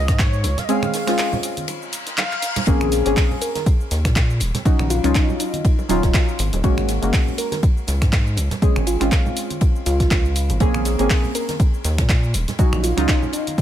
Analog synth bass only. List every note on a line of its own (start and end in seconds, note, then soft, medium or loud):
0.08 0.45 G#2 loud
0.44 0.56 C#2 loud
2.67 3.02 A#1 loud
3.06 3.15 G#1 medium
3.91 4.06 D#2 medium
4.05 4.42 A#2 loud
4.41 4.52 D#1 loud
4.79 5.00 A#1 medium
5.04 5.13 C#2 medium
5.89 6.01 D#1 loud
6.03 6.13 D#1 medium
6.39 6.51 G#1 medium
6.53 6.62 D#1 medium
6.64 6.99 G#1 loud
7.03 7.12 F#1 medium
7.88 8.03 C#2 medium
8.02 8.39 G#2 loud
8.37 8.49 C#2 loud
8.76 8.97 G#1 medium
9.01 9.10 G#1 medium
9.86 10.51 C#2 medium
10.50 10.59 G#1 medium
10.60 10.96 A#1 loud
10.99 11.09 G#1 medium
11.85 12.00 D#2 medium
11.98 12.36 A#2 loud
12.34 12.46 D#1 loud
12.73 12.93 A#1 medium
12.98 13.07 C#2 medium